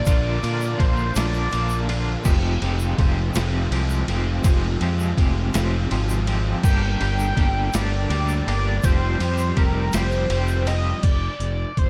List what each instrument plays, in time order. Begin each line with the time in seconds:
Already playing: analog synth lead D5
0.06 fingered electric bass A#1, clean electric guitar A#2 D3 A#3 D4 F4, kick, ride, shaker
0.42 clean electric guitar A#2 D3 A#3 D4 F4, fingered electric bass A#2, ride, shaker
0.61 shaker
0.78 fingered electric bass A#1, clean electric guitar A#2 D3 A#3 D4 F4, analog synth lead C5, kick, ride
0.97 shaker
1.15 fingered electric bass A#1, clean electric guitar A#2 D3 A#3 D4 F4, analog synth lead D5, snare, ride, shaker
1.34 shaker
1.51 fingered electric bass A#1, clean electric guitar A#2 D3 A#3 D4 F4, ride, shaker
1.69 shaker
1.88 clean electric guitar A#2 D3 A#3 D4 F4, ride
2.24 fingered electric bass F1, clean electric guitar F2 C3 F3 G#3 C4 G4, overdriven electric guitar F4, kick, crash, shaker
2.61 fingered electric bass F1, clean electric guitar F2 C3 F3 G#3 C4 G4, overdriven electric guitar F4, ride
2.80 shaker
2.98 fingered electric bass F1, clean electric guitar F2 C3 F3 G#3 C4 G4, overdriven electric guitar F4, kick, ride
3.34 fingered electric bass F1, clean electric guitar F2 C3 F3 G#3 C4 G4, overdriven electric guitar F4, snare, ride, shaker
3.71 fingered electric bass C2, clean electric guitar F2 C3 F3 G#3 C4 G4, overdriven electric guitar F4, ride
3.90 shaker
4.08 fingered electric bass F1, clean electric guitar F2 C3 F3 G#3 C4 G4, overdriven electric guitar F4, ride
4.44 fingered electric bass F1, clean electric guitar F2 C3 F3 G#3 C4 G4, overdriven electric guitar F4, kick, ride, shaker
4.81 fingered electric bass F2, clean electric guitar F2 C3 F3 G#3 C4 G4, overdriven electric guitar F4, ride
5.00 shaker
5.18 fingered electric bass F1, clean electric guitar F2 C3 F3 G#3 C4 G4, overdriven electric guitar F4, kick, ride
5.53 fingered electric bass F1, clean electric guitar F2 C3 F3 G#3 C4 G4, overdriven electric guitar F4, snare, ride, shaker
5.91 fingered electric bass G#1, clean electric guitar F2 C3 F3 G#3 C4 G4, overdriven electric guitar F4, ride
6.10 shaker
6.26 clean electric guitar F2 C3 F3 G#3 C4 G4, overdriven electric guitar F4, ride
6.63 fingered electric bass G1, clean electric guitar G2 D3 G3 A#3 D4 G4, analog synth lead G5, kick, crash, shaker
7.00 fingered electric bass G1, clean electric guitar G2 D3 G3 A#3 D4 G4, ride
7.19 shaker
7.36 fingered electric bass G1, clean electric guitar G2 D3 G3 A#3 D4 G4, kick, ride
7.73 fingered electric bass G1, clean electric guitar G2 D3 G3 A#3 D4 G4, analog synth lead D5, snare, ride, shaker
8.10 fingered electric bass D2, clean electric guitar G2 D3 G3 A#3 D4 G4, ride
8.29 shaker
8.47 fingered electric bass G1, clean electric guitar G2 D3 G3 A#3 D4 G4, analog synth lead D5, ride
8.83 fingered electric bass F1, clean electric guitar F3 G3 C4 G4, analog synth lead C5, kick, ride, shaker
9.20 fingered electric bass F2, clean electric guitar F3 G3 C4 G4, ride, shaker
9.38 shaker
9.56 fingered electric bass F1, clean electric guitar F3 G3 C4 G4, analog synth lead A#4, kick, ride
9.93 fingered electric bass F1, clean electric guitar F3 G3 C4 G4, analog synth lead C5, snare, ride, shaker
10.11 shaker
10.29 fingered electric bass F1, clean electric guitar F3 G3 C4 G4, ride
10.48 shaker
10.66 clean electric guitar F3 G3 C4 G4, analog synth lead D#5, ride, shaker
11.03 fingered electric bass F1, analog synth lead D5, kick, closed hi-hat, crash
11.39 fingered electric bass F1, closed hi-hat
11.77 fingered electric bass F1, analog synth lead C5, kick, closed hi-hat